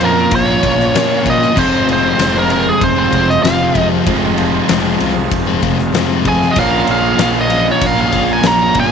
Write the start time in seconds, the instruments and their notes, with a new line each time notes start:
Already playing: overdriven electric guitar A#2 F3 A#3 C#4 F4, steel-string acoustic guitar F4
0.00 fingered electric bass F2, distorted electric guitar A#2 F3 A#3 C#4, overdriven electric guitar A#2, steel-string acoustic guitar A#3, lead electric guitar C4, ride
0.05 lead electric guitar A#4
0.15 muted distorted electric guitar stroke
0.29 fingered electric bass A#1, steel-string acoustic guitar F3 A#3 C#4 F4, lead electric guitar F4, kick, ride
0.36 lead electric guitar C#5
0.46 distorted electric guitar F3 A#3 C#4
0.61 fingered electric bass A#1, distorted electric guitar A#2 F3 A#3 C#4, steel-string acoustic guitar A#3 C#4, kick, ride
0.78 muted distorted electric guitar stroke, snare
0.93 distorted electric guitar A#2 F3 A#3 C#4, steel-string acoustic guitar A#2 F3 A#3 C#4 F4, fingered electric bass A#2, snare, ride
1.23 distorted electric guitar A#2 F3 A#3 C#4, lead electric guitar F4, steel-string acoustic guitar F4, kick, ride
1.27 steel-string acoustic guitar A#3 C#4, lead electric guitar D#5
1.38 distorted electric guitar F3 A#3 C#4
1.42 snare
1.54 fingered electric bass F1, distorted electric guitar F2 C3 F3 G#3 C4, steel-string acoustic guitar F2 C3 F3 G#3 C4 F4, tonewheel organ C4 F4 G#4 C5, overdriven electric guitar F4, kick, crash
1.59 lead electric guitar C4 C5
1.84 fingered electric bass F1, steel-string acoustic guitar F3 G#3 C4 F4
1.89 lead electric guitar C4, ride
1.93 lead electric guitar C5
2.14 steel-string acoustic guitar F2 C3 F3 G#3 C4 F4, distorted electric guitar F2
2.18 fingered electric bass F1, distorted electric guitar C3 F3 G#3 C4, snare, ride
2.35 distorted electric guitar F3 G#3 C4, lead electric guitar A#3
2.39 lead electric guitar A#4
2.46 steel-string acoustic guitar F3 G#3 C4 F4
2.50 overdriven electric guitar F2, distorted electric guitar C3 F3 G#3 C4, ride
2.65 lead electric guitar G#3 G#4, muted distorted electric guitar stroke
2.76 steel-string acoustic guitar F3 G#3 C4 F4
2.81 fingered electric bass F1, lead electric guitar C4 C5, kick, ride
2.96 distorted electric guitar F3 G#3 C4, lead electric guitar C4 C5
3.07 steel-string acoustic guitar F3 G#3 C4 F4
3.12 fingered electric bass F1, distorted electric guitar C3 F3 G#3 C4, kick, ride
3.29 lead electric guitar D#4 D#5, muted distorted electric guitar stroke, snare
3.40 fingered electric bass F1, steel-string acoustic guitar F2 C3 F3 G#3 C4 F4, lead electric guitar F5
3.44 distorted electric guitar F2 C3 F3 G#3 C4, lead electric guitar F4, snare, ride
3.72 distorted electric guitar C3, steel-string acoustic guitar F3 G#3 C4 F4, kick, ride
3.76 fingered electric bass F2, distorted electric guitar F3 G#3 C4
3.92 distorted electric guitar F3 G#3 C4
4.04 fingered electric bass F1, steel-string acoustic guitar F2 C3 F3 G#3 C4 F4, distorted electric guitar F2 C3 F3 G#3 C4, tonewheel organ F4 G#4 C5, kick, ride
4.08 overdriven electric guitar F4
4.37 steel-string acoustic guitar F3 G#3 C4 F4, ride
4.68 fingered electric bass F1, distorted electric guitar F2 C3 F3 G#3 C4, steel-string acoustic guitar F2 C3 F3 G#3 C4 F4, snare, ride
4.84 distorted electric guitar F3 G#3 C4
4.99 fingered electric bass C2, overdriven electric guitar F2, distorted electric guitar C3 F3 G#3 C4, steel-string acoustic guitar F3 G#3 C4 F4, ride
5.14 muted distorted electric guitar stroke
5.30 fingered electric bass F1, steel-string acoustic guitar F3 G#3 C4 F4, kick, ride
5.47 distorted electric guitar F3 G#3 C4
5.62 fingered electric bass F1, distorted electric guitar C3 F3 G#3 C4, steel-string acoustic guitar F3 G#3 C4 F4, kick, ride
5.79 muted distorted electric guitar stroke, snare
5.91 steel-string acoustic guitar F2 C3 F3 G#3 C4 F4, fingered electric bass F2, distorted electric guitar F2 C3 F3 G#3, snare, ride
5.96 distorted electric guitar C4
6.25 distorted electric guitar C3 F3 G#3 C4, steel-string acoustic guitar F3 G#3 C4 F4, lead electric guitar G#4 G#5, kick, ride
6.41 distorted electric guitar F3 G#3 C4, snare
6.50 lead electric guitar G4 D#5
6.55 fingered electric bass A#1, steel-string acoustic guitar A#2 F3 A#3 C#4 F4, distorted electric guitar A#2 F3 A#3, tonewheel organ C#4 F4 A#4 C#5, kick, ride
6.59 distorted electric guitar C#4, overdriven electric guitar F4, lead electric guitar A#4 F5
6.87 fingered electric bass A#1, steel-string acoustic guitar A#3 C#4 F4, lead electric guitar F5, ride
6.91 lead electric guitar G#4
7.18 fingered electric bass A#1, steel-string acoustic guitar A#2 F3 A#3 C#4 F4, distorted electric guitar A#2 F3 A#3 C#4, snare, ride
7.34 distorted electric guitar F3 A#3 C#4, lead electric guitar F4
7.41 lead electric guitar D#5
7.49 distorted electric guitar A#2 F3 A#3 C#4, steel-string acoustic guitar A#3 C#4 F4, ride
7.65 lead electric guitar D#4, muted distorted electric guitar stroke
7.71 lead electric guitar C#5
7.81 fingered electric bass A#1, steel-string acoustic guitar F3 A#3 C#4 F4, kick, ride
7.85 lead electric guitar A#4 F5
7.96 distorted electric guitar F3 A#3 C#4, lead electric guitar G#4
8.01 lead electric guitar F5
8.11 fingered electric bass A#1, distorted electric guitar A#2 F3 A#3 C#4, steel-string acoustic guitar A#3 C#4 F4, kick, ride
8.27 muted distorted electric guitar stroke
8.31 lead electric guitar A#4 G#5
8.42 fingered electric bass A#1, distorted electric guitar A#2 F3 A#3 C#4, steel-string acoustic guitar A#2 F3 A#3 C#4 F4, snare, ride
8.46 lead electric guitar C#5 A#5
8.73 fingered electric bass G1, distorted electric guitar A#2 F3 A#3 C#4, steel-string acoustic guitar A#3 C#4 F4, kick, ride
8.79 lead electric guitar G#4 G#5